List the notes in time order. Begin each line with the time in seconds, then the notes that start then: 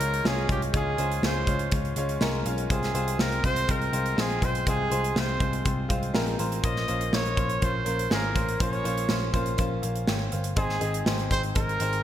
Already playing: G#2 A#4
0.00 C#2 G#3 C#4 F4 C#5, closed hi-hat
0.14 closed hi-hat
0.24 C2 G#3 C#4 F4 G#4 C#5, snare
0.48 C2 G#3 C#4 F4 G4 C#5, kick, closed hi-hat
0.62 closed hi-hat
0.73 C#2 G#2 G#3 C#4 F4 G#4 C#5, kick, closed hi-hat
0.97 C#2 G#3 C#4 F4 C5, closed hi-hat
1.12 closed hi-hat
1.23 C#2 G#3 C#4 F4 C5 C#5, snare
1.47 C#2 G#3 C#4 F4 C#5, kick, closed hi-hat
1.59 closed hi-hat
1.71 C#2 G#3 C#4 F4 C#5, kick, closed hi-hat
1.85 closed hi-hat
1.96 C#2 G#3 C#4 F4 C#5, closed hi-hat
2.09 closed hi-hat
2.20 C2 G#3 C#4 F4 A#4 G#5, snare
2.46 B1 G#3 C#4 F4 C#5 F5, closed hi-hat
2.58 closed hi-hat
2.70 C2 C3 G#3 C4 F4 G#4 C5, kick, closed hi-hat
2.83 snare, closed hi-hat
2.93 C2 G#3 C4 F4 C5, closed hi-hat
3.08 closed hi-hat
3.19 C2 G#3 C4 F4 A#4 C5, snare
3.32 closed hi-hat
3.43 C2 G#3 C4 F4 C5, kick, closed hi-hat
3.56 closed hi-hat
3.68 C2 G#3 C4 F4 A#4 C5, kick, closed hi-hat
3.82 closed hi-hat
3.92 C2 G#3 C4 F4 C5, closed hi-hat
4.06 closed hi-hat
4.16 A#1 G#3 C4 F4 G#4 C5, snare
4.30 closed hi-hat
4.41 B1 G#3 C4 F4 C5, kick, closed hi-hat
4.55 closed hi-hat
4.66 C2 C3 G#3 C4 F4 G#4 C5, kick, closed hi-hat
4.90 C2 G#3 C4 F4 C5, closed hi-hat
5.04 closed hi-hat
5.15 C2 G#3 C4 F4 C5, snare
5.40 C2 G#3 C4 F4 C5, kick, closed hi-hat
5.53 closed hi-hat
5.64 C2 G#3 C4 F4 C5, kick, closed hi-hat
5.88 C2 G#3 C4 F4 C5 F5, kick, closed hi-hat
6.03 closed hi-hat
6.14 A#1 G#3 C4 F4 A#4 G#5, snare
6.27 closed hi-hat
6.38 A1 G#3 C4 F4 C5 A#5, closed hi-hat
6.52 closed hi-hat
6.63 A#1 A#3 C#4 F4 C5 D#5, kick, closed hi-hat
6.76 snare
6.87 A#1 A#3 C#4 F4 C5, closed hi-hat
7.01 closed hi-hat
7.12 A#1 A#3 C#4 F4 C5 C#5, snare
7.26 closed hi-hat
7.36 A#1 A#3 C#4 F4 C5, kick, closed hi-hat
7.50 closed hi-hat
7.61 A#1 A#3 C#4 F4 C5, kick, closed hi-hat
7.85 A#1 A#3 C#4 F4 A#4, closed hi-hat
7.99 closed hi-hat
8.10 G#1 A#3 C#4 F4 G#4 A#4, snare
8.34 A1 A#3 C#4 F4 C5, kick, closed hi-hat
8.49 closed hi-hat
8.59 A#1 A#3 C#4 F4 C5 C#5, kick, closed hi-hat
8.73 closed hi-hat
8.83 A#1 A#3 C#4 F4 C5, closed hi-hat
8.98 closed hi-hat
9.08 A#1 A#3 C#4 F4 C5, snare
9.33 A#1 A#3 C#4 F4 C5, kick, closed hi-hat
9.46 closed hi-hat
9.57 A#1 A#3 C#4 F4 C5, kick, closed hi-hat
9.82 A#1 C5 F5, closed hi-hat
9.95 closed hi-hat
10.07 G#1 C#5 G5, snare
10.32 G1 C5 F5, closed hi-hat
10.44 closed hi-hat
10.56 G#1 G#3 C4 D#4 G#4 C5, kick, closed hi-hat
10.69 snare
10.80 G#1 G#3 C4 D#4 G#4, closed hi-hat
10.94 closed hi-hat
11.05 G#1 G#3 C4 D#4 C5, snare
11.19 closed hi-hat
11.30 G#1 G#3 C4 D#4 C5, kick, closed hi-hat
11.43 closed hi-hat
11.55 G#1 G#3 C4 D#4 A#4 C5, kick, closed hi-hat
11.69 closed hi-hat
11.80 G#1 G#3 C4 D#4 C5, closed hi-hat
11.93 closed hi-hat